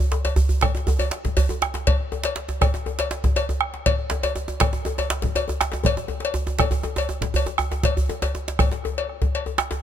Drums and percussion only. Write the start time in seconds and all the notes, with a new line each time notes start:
0.00 djembe bass
0.12 djembe slap, djembe tone
0.25 cowbell, djembe slap, djembe tone
0.36 djembe slap, djembe bass
0.49 djembe bass
0.61 bombo rim, bombo low, cowbell, djembe slap, djembe bass
0.75 djembe slap, djembe tone
0.87 bombo rim, djembe tone, djembe bass
0.99 cowbell, djembe bass
1.11 bombo rim, djembe slap
1.25 bombo low, djembe slap, djembe tone, djembe bass
1.37 cowbell, djembe bass
1.49 djembe tone, djembe bass
1.62 bombo rim, djembe slap
1.74 bombo rim, djembe slap, djembe tone
1.87 bombo low, cowbell, djembe slap, djembe bass
2.01 djembe slap
2.12 djembe tone
2.24 cowbell, djembe slap
2.36 djembe slap
2.49 djembe tone
2.61 bombo rim, bombo low, cowbell, djembe tone, djembe bass
2.74 djembe slap, djembe tone
2.86 bombo rim, djembe tone
2.99 cowbell, djembe slap
3.11 bombo rim, djembe slap
3.24 bombo low, djembe slap, djembe tone, djembe bass
3.36 cowbell, djembe tone
3.49 djembe tone
3.61 bombo rim
3.74 bombo rim, djembe slap
3.86 bombo low, cowbell, djembe slap, djembe bass
3.99 djembe slap
4.10 djembe slap, djembe tone
4.23 cowbell, djembe slap, djembe tone
4.36 djembe slap, djembe tone
4.48 djembe tone
4.60 bombo rim, bombo low, cowbell, djembe slap, djembe bass
4.73 djembe tone
4.85 bombo rim, djembe tone
4.98 cowbell, djembe tone
5.10 bombo rim, djembe slap
5.22 bombo low, djembe slap, djembe tone, djembe bass
5.35 cowbell, djembe tone
5.48 djembe tone
5.61 bombo rim, djembe slap
5.72 bombo rim, djembe slap, djembe tone
5.84 bombo low, cowbell, djembe tone, djembe bass
5.97 djembe tone
6.08 djembe tone
6.20 bombo rim, djembe slap
6.25 cowbell
6.34 djembe tone
6.46 djembe slap, djembe tone
6.59 bombo rim, bombo low, cowbell, djembe slap, djembe bass
6.71 bombo rim, djembe slap, djembe bass
6.83 bombo rim, djembe tone
6.96 cowbell, djembe tone
7.09 djembe tone
7.21 bombo low, djembe slap, djembe bass
7.34 cowbell, djembe bass
7.46 bombo rim, djembe slap, djembe tone
7.58 bombo rim, djembe slap, djembe tone
7.71 bombo rim, djembe slap, djembe tone
7.83 bombo low, cowbell, djembe slap, djembe bass
7.96 djembe slap, djembe bass
8.09 djembe tone
8.22 cowbell, djembe slap, djembe tone
8.35 djembe slap, djembe tone
8.48 djembe slap
8.59 bombo rim, bombo low, cowbell, djembe bass
8.71 djembe slap, djembe tone
8.84 bombo rim, djembe tone
8.98 cowbell
9.09 bombo rim
9.22 bombo low, djembe slap, djembe bass
9.35 cowbell
9.46 djembe tone
9.58 bombo rim, djembe slap
9.71 djembe slap, djembe tone